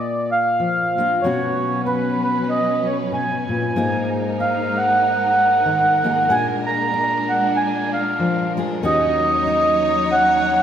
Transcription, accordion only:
0.00 0.30 D5 medium
0.32 1.24 F5 medium
1.22 1.81 C#5 medium
1.87 2.22 B4 medium
2.24 2.50 B4 medium
2.49 2.87 D#5 medium
2.86 2.98 C#5 medium
3.14 4.09 G#5 medium
4.41 4.78 F5 medium
4.78 6.35 F#5 loud
6.31 6.47 G#5 loud
6.66 7.32 A#5 loud
7.30 7.57 F#5 medium
7.57 7.91 G#5 loud
7.93 8.53 F5 medium
8.85 10.15 D#5 loud
10.12 10.63 F#5 loud

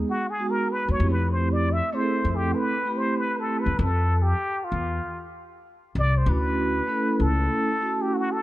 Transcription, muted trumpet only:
0.10 0.32 F#4 medium
0.30 0.52 G#4 medium
0.51 0.74 A#4 medium
0.72 0.93 B4 medium
0.92 1.13 C#5 medium
1.11 1.32 B4 loud
1.32 1.54 C5 medium
1.53 1.74 D5 medium
1.73 1.95 E5 medium
1.94 2.37 C5 medium
2.36 2.57 G4 medium
2.55 2.99 B4 loud
2.98 3.20 C5 medium
3.18 3.41 B4 medium
3.40 3.62 A4 medium
3.61 3.82 B4 medium
3.81 4.24 A4 medium
4.22 4.66 G4 medium
4.64 5.25 F4 medium
5.99 6.19 D5 loud
6.18 6.31 C5 loud
6.29 7.23 B4 medium
7.22 8.03 A4 loud
8.02 8.15 G4 medium
8.14 8.34 F#4 medium
8.32 8.42 A4 medium

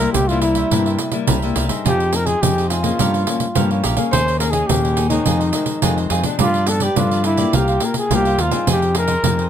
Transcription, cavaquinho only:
0.00 0.28 A#4 medium
0.00 0.28 C5 medium
0.00 0.27 E5 medium
0.30 0.42 A#4 soft
0.30 0.42 C5 soft
0.30 0.43 E5 soft
0.42 0.56 E4 soft
0.42 0.56 A#4 soft
0.42 0.55 C5 soft
0.42 0.55 E5 medium
0.56 0.71 A#4 medium
0.56 0.70 C5 medium
0.56 0.70 E5 medium
0.71 0.85 E4 medium
0.71 0.85 A#4 medium
0.71 0.86 C5 medium
0.71 0.86 E5 medium
0.87 0.98 A#4 soft
0.87 0.99 C5 soft
0.87 0.99 E5 soft
0.99 muted cavaquinho stroke soft
1.28 1.41 E4 medium
1.28 1.42 A#4 medium
1.28 1.42 C5 medium
1.28 1.42 E5 medium
1.43 1.55 A#4 soft
1.43 1.55 C5 soft
1.43 1.56 E5 soft
1.55 1.69 E4 medium
1.55 1.69 A#4 medium
1.55 1.68 C5 medium
1.55 1.67 E5 medium
1.68 1.84 A#4 soft
1.68 1.84 C5 soft
1.68 1.83 E5 soft
1.85 1.98 F4 medium
1.85 1.99 G#4 medium
1.85 1.99 C5 medium
1.85 1.98 D#5 medium
1.99 2.11 G#4 soft
1.99 2.12 C5 soft
1.99 2.12 D#5 soft
2.12 muted cavaquinho stroke soft
2.25 2.55 G#4 medium
2.25 2.55 C5 medium
2.25 2.54 D#5 medium
2.57 2.70 G#4 soft
2.57 2.70 C5 soft
2.57 2.70 D#5 soft
2.70 2.84 F4 medium
2.70 2.84 G#4 medium
2.70 2.83 C5 medium
2.70 2.82 D#5 medium
2.83 2.98 G#4 medium
2.83 2.98 C5 medium
2.83 2.97 D#5 medium
3.00 3.13 G4 medium
3.00 3.13 A#4 medium
3.00 3.13 C#5 medium
3.00 3.12 F5 medium
3.13 3.26 A#4 soft
3.13 3.26 C#5 soft
3.13 3.26 F5 medium
3.26 muted cavaquinho stroke soft
3.55 3.69 G4 medium
3.55 3.69 A#4 medium
3.55 3.69 C#5 medium
3.55 3.70 F5 medium
3.71 3.83 A#4 soft
3.71 3.84 C#5 soft
3.71 3.84 F5 soft
3.83 3.97 G4 medium
3.83 3.97 A#4 medium
3.83 3.96 C#5 medium
3.83 3.95 F5 medium
3.96 4.11 A#4 soft
3.96 4.11 C#5 soft
3.96 4.11 F5 soft
4.11 4.25 D#4 medium
4.11 4.26 G#4 medium
4.11 4.26 C#5 medium
4.11 4.26 D#5 medium
4.27 4.38 G#4 soft
4.27 4.39 C#5 soft
4.27 4.39 D#5 soft
4.39 muted cavaquinho stroke soft
4.52 4.82 G#4 medium
4.52 4.82 C#5 medium
4.52 4.81 D#5 medium
4.83 4.96 G#4 soft
4.83 4.96 C#5 soft
4.83 4.96 D#5 soft
4.96 5.10 D#4 soft
4.96 5.11 G#4 soft
4.96 5.10 C#5 medium
4.96 5.09 D#5 medium
5.10 5.25 G#4 medium
5.10 5.25 C#5 medium
5.10 5.24 D#5 medium
5.26 5.39 F4 medium
5.26 5.40 G#4 medium
5.26 5.39 C5 medium
5.26 5.39 D#5 medium
5.40 5.52 G#4 soft
5.40 5.52 C5 soft
5.40 5.52 D#5 medium
5.53 muted cavaquinho stroke soft
5.82 5.96 F4 medium
5.82 5.96 G#4 medium
5.82 5.96 C5 medium
5.82 5.96 D#5 medium
5.97 6.09 G#4 soft
5.97 6.10 C5 soft
5.97 6.10 D#5 soft
6.10 6.24 F4 medium
6.10 6.24 G#4 medium
6.10 6.23 C5 medium
6.10 6.22 D#5 medium
6.24 6.39 G#4 soft
6.24 6.38 C5 soft
6.24 6.38 D#5 soft
6.39 6.53 F4 medium
6.39 6.53 G4 medium
6.39 6.53 B4 medium
6.39 6.54 D5 medium
6.55 6.66 G4 soft
6.55 6.67 B4 soft
6.55 6.67 D5 medium
6.82 7.10 G4 medium
6.82 7.10 B4 medium
6.82 7.09 D5 medium
7.12 7.24 G4 soft
7.12 7.25 B4 soft
7.12 7.24 D5 soft
7.25 7.38 F4 soft
7.25 7.38 G4 medium
7.25 7.38 B4 medium
7.25 7.37 D5 medium
7.38 7.52 G4 medium
7.38 7.52 B4 medium
7.38 7.52 D5 medium
7.53 7.66 F4 medium
7.53 7.67 A#4 medium
7.53 7.67 C5 medium
7.53 7.67 F5 medium
7.68 7.81 A#4 soft
7.68 7.80 C5 soft
7.68 7.81 F5 medium
7.81 muted cavaquinho stroke soft
8.11 8.24 F4 medium
8.11 8.24 A#4 medium
8.11 8.24 C5 medium
8.11 8.25 F5 medium
8.26 8.38 A#4 soft
8.26 8.39 C5 soft
8.26 8.38 F5 soft
8.38 8.52 F4 medium
8.38 8.52 A#4 medium
8.38 8.51 C5 medium
8.38 8.50 F5 medium
8.52 8.66 A#4 soft
8.52 8.66 C5 soft
8.52 8.65 F5 medium
8.67 8.80 F4 medium
8.67 8.81 G#4 medium
8.67 8.81 C5 medium
8.67 8.81 D#5 medium
8.82 8.95 G#4 soft
8.82 8.95 C5 soft
8.82 8.95 D#5 soft
8.96 muted cavaquinho stroke soft
9.08 9.37 G#4 medium
9.08 9.37 C5 medium
9.08 9.36 D#5 medium
9.39 9.49 G#4 soft
9.39 9.49 C5 soft
9.39 9.49 D#5 soft

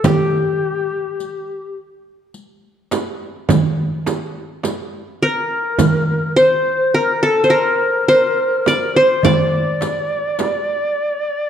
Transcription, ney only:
0.04 0.10 A4 medium
0.09 1.77 G4 medium
5.22 5.28 C5 medium
5.27 6.33 A#4 medium
6.36 6.96 C5 medium
6.95 7.25 A#4 medium
7.24 7.53 A4 medium
7.52 8.97 A#4 medium
8.95 9.25 C5 medium
8.95 9.00 D5 medium
9.23 11.50 D5 medium
9.23 9.28 F5 medium

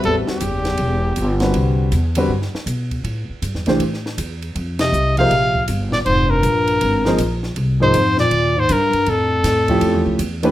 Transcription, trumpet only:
0.05 0.16 A4 medium
0.31 1.39 G4 medium
4.81 5.15 D#5 medium
5.19 5.66 F5 loud
5.93 5.99 D5 medium
6.06 6.32 C5 medium
6.30 7.43 A#4 medium
7.83 8.17 C5 medium
8.20 8.61 D5 loud
8.59 8.74 C5 medium
8.72 9.11 A#4 medium
9.09 10.21 A4 medium

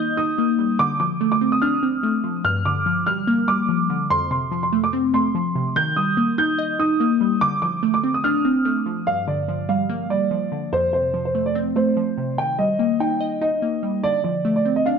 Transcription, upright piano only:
0.00 0.15 G6 medium
0.17 0.76 D#6 medium
0.79 0.96 D6 loud
1.00 1.30 D6 medium
1.32 1.48 D6 medium
1.52 1.60 D#6 medium
1.62 2.41 F6 medium
2.45 2.61 F6 loud
2.65 3.04 D6 medium
3.06 3.46 F6 medium
3.48 4.06 D6 medium
4.10 4.27 C6 loud
4.31 4.61 C6 medium
4.63 4.80 C6 medium
4.84 4.91 D6 medium
5.14 5.72 C6 medium
5.76 5.93 G6 loud
5.96 6.35 D#6 medium
6.38 6.77 G6 medium
6.79 7.38 D#6 medium
7.41 7.58 D6 loud
7.62 7.92 D6 medium
7.94 8.11 D6 medium
8.14 8.22 D#6 medium
8.24 9.03 F6 medium
9.07 9.24 F5 loud
9.28 9.67 D5 medium
9.69 10.08 F5 medium
10.10 10.69 D5 medium
10.73 10.89 C5 loud
10.93 11.23 C5 medium
11.25 11.42 C5 medium
11.46 11.54 D5 medium
11.76 12.34 C5 medium
12.38 12.55 G5 medium
12.58 12.97 D#5 medium
13.00 13.39 G5 medium
13.42 14.00 D#5 medium
14.03 14.20 D5 loud
14.24 14.54 D5 medium
14.56 14.73 D5 medium
14.76 14.84 D#5 medium
14.86 14.99 F5 medium

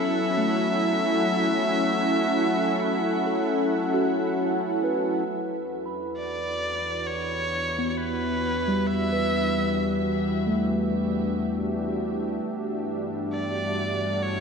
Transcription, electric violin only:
0.00 4.39 E5 loud
6.17 7.08 D5 medium
7.07 7.91 C#5 loud
7.91 7.99 C#5 medium
7.98 8.88 B4 medium
8.87 10.21 E5 loud
13.33 14.25 D5 loud
14.23 14.40 C#5 loud

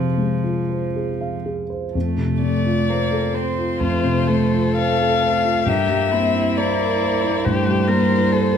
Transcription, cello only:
0.00 1.45 F3 soft
1.93 2.91 A3 soft
2.89 3.36 A#3 soft
3.34 3.82 C4 soft
3.80 4.77 A3 soft
4.77 5.70 A3 soft
5.69 6.14 A#3 soft
6.12 6.60 C4 soft
6.58 7.48 A#3 soft
7.46 7.91 A3 soft
7.89 8.58 G3 soft

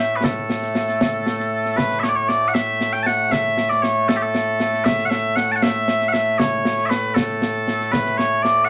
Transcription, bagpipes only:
0.00 8.69 A2 medium
0.00 8.69 A3 medium
0.00 0.16 E5 medium
0.16 0.24 B4 medium
0.24 1.77 A4 medium
1.77 2.00 B4 medium
2.00 2.09 C#5 medium
2.00 2.03 E5 medium
2.09 2.16 D5 medium
2.16 2.29 C#5 medium
2.29 2.48 D5 loud
2.48 2.54 F#5 medium
2.54 2.93 E5 loud
2.93 3.03 G5 loud
3.03 3.32 F#5 loud
3.03 3.06 A5 loud
3.32 3.70 E5 loud
3.70 3.82 D5 loud
3.82 4.08 C#5 medium
4.08 4.16 A4 medium
4.16 4.22 G4 medium
4.22 4.85 A4 loud
4.85 5.05 E5 loud
5.05 5.10 F#5 loud
5.10 5.36 E5 loud
5.36 5.52 F#5 loud
5.52 5.56 A5 medium
5.56 5.63 F#5 medium
5.63 6.08 E5 loud
6.08 6.13 F#5 loud
6.13 6.38 E5 loud
6.38 6.86 C#5 medium
6.86 7.15 B4 medium
6.86 6.89 E5 medium
7.15 7.92 A4 medium
7.92 8.17 B4 medium
8.17 8.42 C#5 loud
8.42 8.65 D5 loud
8.65 8.69 F#5 loud

